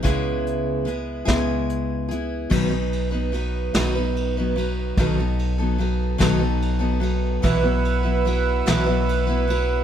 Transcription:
<<
  \new Staff \with { instrumentName = "Accordion" } { \time 6/8 \key b \mixolydian \tempo 4. = 49 r2. | r2. | r2. | <b' fis'' e'''>2. | }
  \new Staff \with { instrumentName = "Steel-string acoustic guitar" } { \time 6/8 \key b \mixolydian <cis gis b e' gis'>4 <gis b e' gis'>8 <cis gis b e' gis'>4 <b e' gis'>8 | <b, dis fis b dis' b'>16 <fis b dis' b'>8 <fis b dis' b'>16 <fis b dis' b'>8 <b, dis fis b dis' b'>16 <fis b dis' b'>8 <fis b dis' b'>16 <fis b dis' b'>8 | <b, dis fis b dis' a'>16 <fis b dis' a'>8 <fis b dis' a'>16 <fis b dis' a'>8 <b, dis fis b dis' a'>16 <fis b dis' a'>8 <fis b dis' a'>16 <fis b dis' a'>8 | <b, e fis b e' b'>16 <fis b e' b'>8 <fis b e' b'>16 <fis b e' b'>8 <b, e fis b e' b'>16 <fis b e' b'>8 <fis b e' b'>16 <fis b e' b'>8 | }
  \new Staff \with { instrumentName = "Upright bass" } { \clef bass \time 6/8 \key b \mixolydian cis,4. cis,4. | b,,4. b,,4. | b,,4. b,,4. | b,,4. b,,4. | }
  \new DrumStaff \with { instrumentName = "Drums" } \drummode { \time 6/8 <hh bd>8 hh8 hh8 <hh bd sn>8 hh8 hh8 | <cymc bd>8 cymr8 cymr8 <cymr sn>8 cymr8 cymr8 | <bd cymr>8 cymr8 cymr8 <bd cymr sn>8 cymr8 cymr8 | <bd cymr>8 cymr8 cymr8 <cymr sn>8 cymr8 cymr8 | }
>>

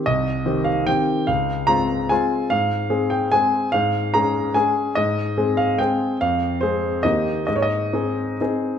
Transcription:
\new Staff \with { instrumentName = "Grand piano" } { \time 3/4 \key aes \major \tempo 4 = 145 << { ees''4. f''8 g''4 | f''4 bes''4 aes''4 | f''4. g''8 aes''4 | f''4 bes''4 aes''4 |
ees''4. f''8 g''4 | f''4 c''4 ees''4 | \tuplet 3/2 { ees''16 des''16 ees''4~ } ees''2 | } \\ { c,4 <ees c' g'>4 <ees c' g'>4 | des,4 <aes c' f'>4 <aes c' f'>4 | aes,4 <aes c' aes'>4 <aes c' aes'>4 | aes,4 <aes des' aes'>4 <aes des' aes'>4 |
aes,4 <aes c' aes'>4 <aes c' aes'>4 | f,4 <aes c' aes'>4 <ees, bes ees' g'>4 | aes,4 <c' ees' aes'>4 <c' ees' aes'>4 | } >> }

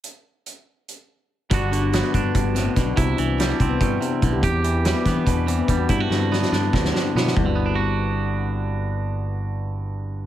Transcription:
<<
  \new Staff \with { instrumentName = "Handpan" } { \time 7/8 \key g \major \tempo 4 = 143 r2. r8 | fis'8 d'16 d'16 fis'16 b16 d'16 b8 d'16 c'16 b16 d'16 fis'16 | e'8 d'16 c'16 d'16 e'16 c'16 b8 d'16 c'16 d'16 e'16 g'16 | g'8 e'16 e'16 g'16 b16 d'16 b8 d'16 c'16 b16 d'16 fis'16 |
e'8 d'16 c'16 d'16 e'16 c'16 b8 d'16 c'16 d'16 e'16 fis'16 | <g b d'>2.~ <g b d'>8~ | <g b d'>2.~ <g b d'>8 | }
  \new Staff \with { instrumentName = "Clean electric guitar" } { \clef bass \time 7/8 \key g \major << { r2. r8 | <d b d' fis'>4 b8 d'2 | e'4 g8 c'2 | g'4 g8 b4. g8 |
e'16 fis'8. b8 d'4. b8 | <d b d' fis'>2.~ <d b d' fis'>8~ | <d b d' fis'>2.~ <d b d' fis'>8 | } \\ { r2. r8 | g,8 d4. g,8 a,8 b,8 | c8 e4. b,8 c8 d8 | e,8 e4. b,8 e4 |
g,8 d4. g,8 d4 | g,2.~ g,8~ | g,2.~ g,8 | } >> }
  \new Staff \with { instrumentName = "Fingered electric bass" } { \clef bass \time 7/8 \key g \major r2. r8 | g,,4. g,8 g,,4 b,,8 | c,8 c,4 c,8 g,8 r8 b,,8 | e,4. e8 e,4 e,8 |
g,8 g,4 g,8 d,8 r8 b,8 | g,,2.~ g,,8~ | g,,2.~ g,,8 | }
  \new DrumStaff \with { instrumentName = "Drums" } \drummode { \time 7/8 hh4 hh4 hh4. | <hh bd>8 hh8 <hh sn>8 <hh bd>8 <hh bd>8 <hh sn>8 <hh bd sn>8 | <hh bd>8 hh8 <hh sn>8 <hh bd>8 <hh bd>8 hh8 <hh bd>8 | <hh bd>8 hh8 <hh sn>8 <hh bd sn>8 <hh bd>8 hh8 <hh bd>8 |
<hh bd>8 sn8 sn16 sn16 sn8 <bd sn>16 sn16 sn8 sn16 sn16 | <bd tomfh>4 r4 r4. | r4 r4 r4. | }
>>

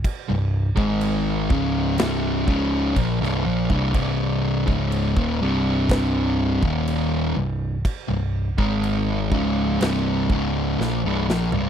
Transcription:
<<
  \new Staff \with { instrumentName = "Distorted electric guitar" } { \clef bass \time 4/4 \key c \minor \tempo 4 = 62 r16 <c, g,>8 <aes, ees aes>8. <des, aes, des>8 <c, g, c>8 <des, aes, des>8 <bes, f>16 <c, g,>16 <bes, f>16 <c, g,>16 | <c, g, c>8. <des, aes, des>8 <ees, bes,>16 <c, g, c>4~ <c, g, c>16 <ees, bes, ees>8. <c, g,>8 | r16 <c, g,>8 <aes, ees aes>8. <des, aes, des>8 <c, g, c>8 <des, aes, des>8 <bes, f>16 <c, g,>16 <bes, f>16 <c, g,>16 | }
  \new Staff \with { instrumentName = "Picked electric bass" } { \clef bass \time 4/4 \key c \minor r16 c,,8 aes,,8. des,,8 c,,8 des,,8 bes,,16 c,,16 bes,,16 c,,16 | c,,8. des,,8 ees,,16 c,,4~ c,,16 ees,,8. c,,8 | r16 c,,8 aes,,8. des,,8 c,,8 des,,8 bes,,16 c,,16 bes,,16 c,,16 | }
  \new DrumStaff \with { instrumentName = "Drums" } \drummode { \time 4/4 <cymc bd>8. bd16 cymc8 bd8 <cymc sn>8 bd8 <cymc bd>16 sn8 bd16 | <cymc bd>8. bd16 cymc16 bd8. <cymc bd sn>8. bd16 cymc4 | <cymc bd>8. bd16 cymc8 bd8 <cymc sn>8 bd8 sn8 sn16 tomfh16 | }
>>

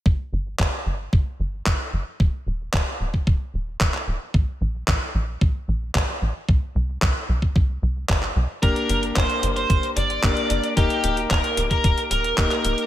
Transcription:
<<
  \new Staff \with { instrumentName = "Lead electric guitar" } { \time 4/4 \key g \minor \tempo 4 = 112 r1 | r1 | r1 | r1 |
bes'8. r16 c''8 r16 c''8 r16 d''4~ d''16 r16 | g'8. r16 bes'8 r16 bes'8 r16 bes'4~ bes'16 r16 | }
  \new Staff \with { instrumentName = "Electric grand piano" } { \time 4/4 \key g \minor r1 | r1 | r1 | r1 |
<bes d' g' bes'>2. <bes d' g' bes'>4 | <bes ees' g' bes'>2. <bes ees' g' bes'>4 | }
  \new Staff \with { instrumentName = "Analog synth bass" } { \clef bass \time 4/4 \key g \minor g,,8 g,,8 g,,8 g,,8 g,,8 g,,8 g,,8 g,,8 | ees,,8 ees,,8 ees,,8 ees,,8 ees,,8 ees,,8 ees,,8 ees,,8 | bes,,8 bes,,8 bes,,8 bes,,8 bes,,8 bes,,8 bes,,8 bes,,8 | c,8 c,8 c,8 c,8 c,8 c,8 g,,8 c,8 |
g,,8 g,,8 g,,8 g,,8 g,,8 g,,8 g,,8 g,,8 | ees,,8 ees,,8 ees,,8 ees,,8 ees,,8 ees,,8 ees,,8 ees,,8 | }
  \new DrumStaff \with { instrumentName = "Drums" } \drummode { \time 4/4 bd4 <hc bd>4 bd4 <hc bd>4 | bd4 <hc bd>8. bd16 bd4 <hc bd>16 hc8. | bd4 <hc bd>4 bd4 <hc bd>4 | bd4 <hc bd>8. bd16 bd4 <hc bd>16 hc8. |
<hh bd>16 hh16 hh16 hh16 <hc hh bd>16 hh16 hh16 hh16 <hh bd>16 hh16 hh16 hh16 <hc hh bd>16 hh16 hh16 hh16 | <hh bd>16 hh16 hh16 hh16 <hc hh bd>16 hh16 hh16 <hh bd>16 <hh bd>16 hh16 hh16 hh16 <hc hh bd>16 <hc hh>16 hh16 hh16 | }
>>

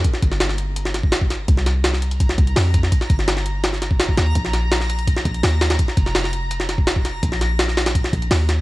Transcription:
<<
  \new Staff \with { instrumentName = "Synth texture" } { \time 4/4 \key c \minor \tempo 4 = 167 <bes'' bes'''>1~ | <bes'' bes'''>1~ | <bes'' bes'''>1~ | <bes'' bes'''>1~ |
<bes'' bes'''>1~ | <bes'' bes'''>1 | }
  \new Staff \with { instrumentName = "808-style bass" } { \clef bass \time 4/4 \key c \minor r8 g,,2.~ g,,8 | c,2~ c,8 c,8 f,4 | r8 g,,2. ees,8 | bes,,2~ bes,,8 bes,,8 ees,4 |
r8 f,,2.~ f,,8 | bes,,2~ bes,,8 bes,,8 ees,4 | }
  \new DrumStaff \with { instrumentName = "Drums" } \drummode { \time 4/4 <hh bd>16 sn16 <hh bd>16 sn16 <hh sn>16 sn16 hh8 hh16 sn16 <hh sn>16 bd16 <hh sn>16 bd16 <hh sn>8 | <hh bd>16 sn16 <hh sn>8 <hh sn>16 sn16 hh16 hh16 <hh bd>16 sn16 <hh bd>16 hh16 <hho sn>8 <hh bd>16 sn16 | <hh bd>16 sn16 <hh bd>16 sn16 <hh sn>16 sn16 hh8 <hh sn>16 sn16 <hh sn>16 bd16 <hh sn>16 bd16 <hh sn>8 | <hh bd>16 sn16 <hh sn>8 <hh sn>16 sn16 hh16 hh16 <hh bd>16 sn16 <hh bd>16 hh16 <hho sn>8 <hh sn>16 <hh sn>16 |
<hh bd>16 sn16 <hh bd>16 sn16 <hh sn>16 sn16 hh8 hh16 sn16 <hh sn>16 bd16 <hh sn>16 bd16 <hh sn>8 | <hh bd>16 sn16 <hh sn>8 <hh sn>16 sn16 <hh sn>16 <hh sn>16 <hh bd>16 sn16 <hh bd>16 hh16 <hho sn>8 <hh sn>8 | }
>>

